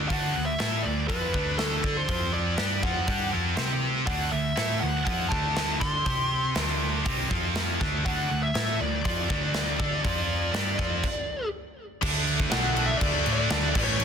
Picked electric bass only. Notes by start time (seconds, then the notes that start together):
0.10 D2
0.36 D2
0.60 A2
0.85 D2
1.10 F2
1.35 D2
1.84 D3
2.09 F2
2.59 G2
2.83 F2
3.08 G2
3.33 F2
3.58 C3
4.08 D2
4.33 D2
4.57 A2
4.82 D2
5.07 F2
5.32 D2
5.82 D3
6.06 C3
6.56 D2
7.06 C2
7.31 F2
7.82 D2
8.06 D2
8.30 D2
8.55 A2
8.80 D2
9.06 F2
9.30 D2
9.80 D3
10.05 F2
10.54 G2
10.79 F2
12.03 D2
12.52 B1
13.01 D2
13.26 A2
13.50 D2
13.75 A1
13.99 A1